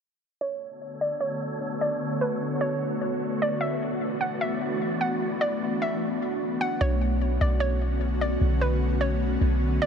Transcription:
0.41 3.58 D3 medium
0.41 6.77 A3 medium
0.41 6.77 B3 medium
0.41 3.58 D4 medium
0.41 6.77 F#4 medium
0.41 3.58 A4 medium
0.41 3.58 C#5 medium
0.41 0.97 C#5 medium
0.41 3.58 C#5 medium
1.01 1.20 D5 medium
1.20 1.77 C#5 medium
1.81 2.00 D5 medium
2.21 2.59 B4 medium
2.61 2.80 C#5 medium
3.42 3.60 D5 medium
3.61 6.78 E3 medium
3.61 6.78 D4 medium
3.61 6.78 E4 medium
3.61 6.78 F#4 medium
3.61 6.78 D5 medium
3.61 4.17 E5 medium
4.21 4.40 F#5 medium
4.41 4.97 E5 medium
5.01 5.20 F#5 medium
5.41 5.79 D5 medium
5.82 6.57 E5 medium
6.61 6.80 F#5 medium
6.81 7.38 B1 loud
6.81 9.86 D3 medium
6.81 9.86 A3 medium
6.81 9.86 B3 medium
6.81 9.86 C#4 medium
6.81 9.86 F#4 loud
6.81 7.37 C#5 medium
7.41 8.37 B1 loud
7.41 7.60 D5 medium
7.60 8.17 C#5 medium
8.21 8.40 D5 medium
8.41 9.37 B1 loud
8.61 8.99 B4 medium
9.01 9.20 C#5 medium
9.41 9.79 B1 loud
9.82 9.86 D5 medium

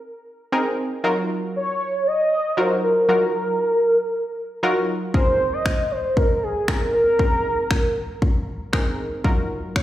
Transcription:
0.00 0.23 A#4 loud
0.52 0.84 C4 medium
0.52 0.85 D#4 medium
0.52 0.85 G#4 medium
0.52 0.85 A#4 loud
1.04 1.68 F#3 medium
1.04 1.68 D#4 medium
1.04 1.68 F4 medium
1.04 1.68 F#4 medium
1.04 1.68 A#4 loud
1.56 2.09 C#5 loud
2.07 2.60 D#5 loud
2.57 2.89 F#3 medium
2.57 2.90 D#4 medium
2.57 2.90 F4 medium
2.57 2.90 F#4 medium
2.57 2.90 A#4 medium
2.57 2.83 C5 loud
2.83 4.85 A#4 loud
3.09 3.73 F#3 medium
3.09 3.73 D#4 medium
3.09 3.73 F4 medium
3.09 3.73 F#4 medium
3.09 3.73 A#4 medium
4.63 4.95 F#3 medium
4.63 4.95 D#4 medium
4.63 4.95 F4 medium
4.63 4.95 F#4 medium
4.63 4.95 A#4 loud
5.14 5.78 C4 medium
5.14 5.78 D#4 medium
5.14 5.78 G#4 medium
5.14 5.78 A#4 medium
5.14 5.54 C5 loud
5.14 kick loud
5.53 5.93 D#5 loud
5.66 finger snap medium
5.66 kick loud
5.91 6.18 C5 medium
6.17 6.45 A#4 loud
6.17 kick loud
6.43 6.70 G#4 medium
6.68 7.00 C4 medium
6.68 7.00 D#4 medium
6.68 7.00 G#4 medium
6.68 7.00 A#4 medium
6.68 6.93 A#4 medium
6.68 finger snap loud
6.68 kick loud
6.94 8.44 A#4 loud
7.19 7.83 C4 medium
7.19 7.83 D#4 medium
7.19 7.83 G#4 medium
7.19 7.83 A#4 medium
7.19 kick loud
7.71 finger snap medium
7.71 kick loud
8.22 kick loud
8.73 9.05 C4 medium
8.73 9.05 D#4 medium
8.73 9.05 G#4 medium
8.73 9.05 A#4 loud
8.73 finger snap loud
8.73 kick loud
9.24 9.83 F#3 medium
9.24 9.83 D#4 medium
9.24 9.83 F4 medium
9.24 9.83 F#4 medium
9.24 9.83 A#4 loud
9.24 kick loud
9.76 9.83 C#5 loud
9.76 finger snap medium
9.76 kick loud

